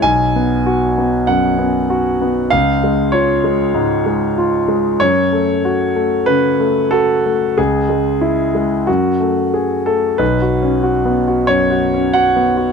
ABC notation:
X:1
M:4/4
L:1/8
Q:1/4=94
K:Bdor
V:1 name="Grand piano"
g4 f4 | ^e2 c3 z3 | c4 B2 A2 | G4 F3 A |
B4 c2 f2 |]
V:2 name="Grand piano"
B,,, B, F B, F,, B, F B, | C,, G, ^E G, G,, G, E G, | F,, A, F A, C, A, F A, | C,, G, E G, F,, A, G A, |
(3B,,, F C (3F B, F (3F,, F C (3F B, F |]